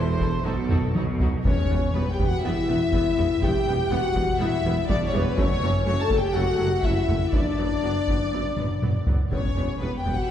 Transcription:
Already playing: E1 E2 E3 A4 C5
0.19 E3 E4 A4, taiko
0.44 B1 B2 D#3 F#3 D#4 F#4 A4
0.70 F#3 D#4 F#4, taiko low-mid
0.95 B1 B2 F#3 D#4 F#4, taiko high
1.20 F#3 D#4 F#4, taiko low
1.44 E1 E2 G3 B3 C#4 C#5, taiko
1.70 E1 E2 G3 B3
1.95 E1 E2 G3 B3 B4
2.12 G4 G5
2.19 E1 E2 G3 B3, taiko
2.27 F#4 F#5
2.44 E1 E2 G3 B3 E4 E5
2.68 E1 E2 G3 B3
2.92 E1 E2 G3 B3, taiko
3.17 E1 E2 G3 B3, taiko low-mid
3.42 E1 E2 G3 B3 G4 G5, taiko
3.67 E1 E2 G3 B3
3.91 E1 E2 G3 B3 F#4 F#5
4.15 E1 E2 G3 B3, taiko
4.39 E1 E2 G3 B3 E4 E5
4.64 E1 E2 G3 B3
4.88 E1 E2 G3 B3 D4 D5, taiko
5.04 C#4 C#5
5.13 E1 E2 G3 B3, taiko low-mid
5.20 B3 B4
5.36 F#1 F#2 F#3 A3 C#4 C#5, taiko
5.62 F#1 F#2 F#3 A3
5.84 F#1 F#2 F#3 A3 C#4 C#5
6.02 A4 A5
6.10 F#1 F#2 F#3 A3, taiko
6.19 G4 G5
6.34 F#1 F#2 F#3 A3 F#4 F#5
6.58 F#1 F#2 F#3 A3
6.83 F#1 F#2 F#3 A3 E4 E5, taiko
7.08 F#1 F#2 F#3 A3, taiko low-mid
7.33 F#1 F#2 F#3 B3 D4 D5, taiko
7.58 F#1 F#2 F#3 B3
7.82 F#1 F#2 F#3 B3
8.07 F#1 F#2 F#3 B3, taiko
8.33 F#1 F#2 F#3 B3
8.57 F#1 F#2 F#3 B3, taiko mid
8.82 F#1 F#2 F#3 B3, taiko mid
9.07 F#1 F#2 F#3 B3, taiko low
9.30 E1 E2 G3 B3 C#4 C#5, taiko
9.56 E1 E2 G3 B3
9.80 E1 E2 G3 B3 B4
9.97 G4 G5
10.05 E1 E2 G3 B3, taiko
10.14 F#4 F#5

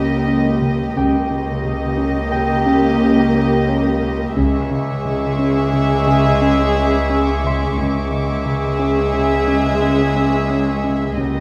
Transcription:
Already playing: C#2 A#3 C#4 G4 D#5
0.28 C#4
0.62 C#3
0.95 C#2 C#3 A#3 G4 D#5 G5
1.30 C#3
1.64 C#3
1.98 C#4
2.31 C#3 G5
2.66 C#3
3.00 C#4
3.34 C#4
3.69 C#4
4.03 C#3
4.35 C#2 C#3 G#3 G#4 E5 C#6
4.71 C#3
5.05 C#3 D6
5.39 C#4
5.73 C#3
6.07 C#3 G#4 G#5
6.42 C#4
6.76 C#4
7.10 C#4
7.44 C#3 E5 C6
7.77 C#2 C#3 G#3 G#4 E5
8.12 C#3
8.46 C#3
8.79 C#4
9.14 C#3
9.38 D#6
9.48 C#3
9.82 C#4
10.16 C#4
10.50 C#4
10.84 C#3
11.17 C#2 C#3 A#3 G4 D#5 D#6

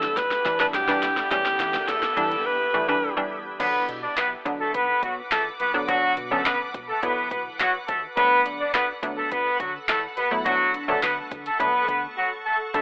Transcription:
Already playing: D3 E3 G3 B3 D4 E4 G4 A4, riser
0.03 snare
0.17 E2 B4, kick, snare, closed hi-hat
0.31 snare
0.45 E3 G3 D4, kick, snare, closed hi-hat
0.60 E3 G3 D4 B4, snare
0.74 F#2 G4, snare, closed hi-hat
0.88 E3 G3 D4, snare
1.03 F2, snare, closed hi-hat
1.17 snare
1.31 E2 E3 G3 C#4 G4, kick, snare, closed hi-hat
1.46 snare
1.60 E3, snare, closed hi-hat
1.74 snare
1.88 E2 A4, snare, closed hi-hat
2.03 snare
2.17 E3 G3 D4, closed hi-hat
2.31 closed hi-hat
2.46 B4
2.74 E3 G3 A3
2.88 E3 G3 D4 B4
3.17 E3 G3 D4
3.60 B1 D3 F#3 B3 D4 B4 F#5 D6, kick, closed hi-hat, crash
3.89 B2, closed hi-hat
4.03 D4 D5
4.17 B1 B3 B4, snare, clap, closed hi-hat
4.45 B2 D3 F#3 B3 D4, kick, closed hi-hat
4.60 A3 A4
4.74 B1 B3 B4, kick, closed hi-hat
5.03 B2 F#3 F#4, kick, closed hi-hat
5.31 C#2 A3 A4, snare, clap, closed hi-hat
5.60 C2 B3 B4, closed hi-hat
5.74 D3 F#3 B3 D4
5.88 B1 D3 F#3 B3 D4 F#4, kick, closed hi-hat
6.17 B2, closed hi-hat
6.31 D3 F#3 A3 B3 C#4 A4
6.46 B1 B3 B4, snare, clap, closed hi-hat
6.74 B2, kick, closed hi-hat
6.89 A3 A4
7.03 B1 D3 F#3 B3 E4 B4, kick, closed hi-hat
7.31 B2 B3 B4, kick, closed hi-hat
7.60 E2 F#3 F#4, snare, clap, closed hi-hat
7.88 D#2 A3 A4, kick, closed hi-hat
8.17 D2 F#3 A3 B3 D4 A4 B4 B5, kick, closed hi-hat
8.46 D3, closed hi-hat
8.60 D4 D5
8.74 D2 B3 B4, snare, clap, closed hi-hat
9.03 D3 F#3 A3 B3 D4, kick, closed hi-hat
9.17 A3 A4
9.31 D2 B3 B4, kick, closed hi-hat
9.60 D3 F#3 F#4, kick, closed hi-hat
9.89 E2 A3 A4, snare, clap, closed hi-hat
10.17 D#2 B3 B4, closed hi-hat
10.31 F#3 A3 B3 E4
10.45 D2 F#3 A3 B3 D4 F#4 C#6, kick, closed hi-hat
10.74 D3, closed hi-hat
10.88 F#3 A3 B3 D4 A4
11.03 D2 B3 B4, snare, clap, closed hi-hat
11.31 D3, kick, closed hi-hat
11.46 A3 A4, closed hi-hat
11.60 D2 F#3 A3 B3 D4 B4, kick, closed hi-hat
11.88 D3 B3 B4, kick, closed hi-hat
12.17 F#3 F#4
12.46 A3 A4
12.74 D2 D3 G3 A3 D4 A4, kick, closed hi-hat

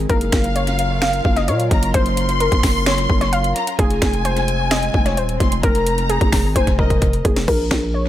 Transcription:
0.09 F#1 F#3 C#4 F4 A#4 F5, kick, closed hi-hat
0.21 closed hi-hat
0.32 F#1, finger snap, kick, snare, closed hi-hat
0.44 closed hi-hat
0.56 C#5, closed hi-hat
0.67 closed hi-hat
0.79 closed hi-hat
1.02 F5, finger snap, snare, closed hi-hat
1.13 closed hi-hat
1.25 F#1, kick
1.37 D#5, closed hi-hat
1.48 A#2 C#5, closed hi-hat
1.60 closed hi-hat
1.71 F#1 A#5, kick, closed hi-hat
1.83 closed hi-hat
1.94 F#1 C5 C6, kick, closed hi-hat
2.06 closed hi-hat
2.17 closed hi-hat
2.29 closed hi-hat
2.40 A#4, closed hi-hat
2.52 F#1, kick, closed hi-hat
2.63 F#1, finger snap, kick, snare, open hi-hat
2.86 C#5, finger snap, snare, closed hi-hat
2.98 closed hi-hat
3.10 F#1, kick
3.21 C#5, closed hi-hat
3.33 F5, closed hi-hat
3.44 closed hi-hat
3.56 A#5, closed hi-hat
3.67 closed hi-hat
3.79 F1 G#3 C4 G#4 G#5, kick, closed hi-hat
3.90 closed hi-hat
4.02 F1, finger snap, kick, snare, closed hi-hat
4.13 closed hi-hat
4.25 C5, closed hi-hat
4.37 closed hi-hat
4.48 closed hi-hat
4.71 D#5, finger snap, snare, closed hi-hat
4.83 closed hi-hat
4.94 F1, kick
5.06 C#5, closed hi-hat
5.17 D#1 C5, closed hi-hat
5.29 closed hi-hat
5.40 F1 C6, kick, closed hi-hat
5.52 closed hi-hat
5.63 F1 D#4 A#4 A#5, kick, closed hi-hat
5.75 closed hi-hat
5.87 closed hi-hat
5.98 closed hi-hat
6.10 G#4, closed hi-hat
6.21 F1, kick, closed hi-hat
6.32 finger snap, kick, snare, open hi-hat
6.44 G#1
6.55 F1 C5 G#5, kick, closed hi-hat
6.67 kick, closed hi-hat
6.79 A#4 D#5, kick
6.90 kick, closed hi-hat
7.02 kick, closed hi-hat
7.13 closed hi-hat
7.25 F1 G#4, kick, closed hi-hat
7.36 snare, closed hi-hat
7.48 A#1 A#4, kick, crash
7.71 A#1, finger snap, kick, snare
7.94 C#5

